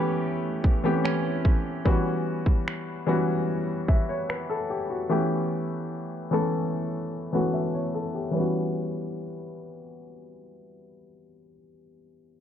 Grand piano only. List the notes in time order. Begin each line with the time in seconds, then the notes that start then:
Already playing: E3 A3 B3 C#4 G4
0.84 E3 A3 B3 C4 G4
0.92 C#4
1.85 E3 G3 B3 C#4 F#4
3.07 E3 G3 B3 C#4 F#4
3.89 E5
4.09 C#5
4.29 B4
4.50 A4
4.70 G4
4.90 F#4
5.09 E3 A3 B3 C#4 G4
6.31 E3 A3 B3 C#4 A4
7.33 E3 A3 B3 C#4 F#4
7.54 E5
7.74 C#5
7.94 A4
8.15 G4
8.31 E3 G3 B3
8.37 C#4 F#4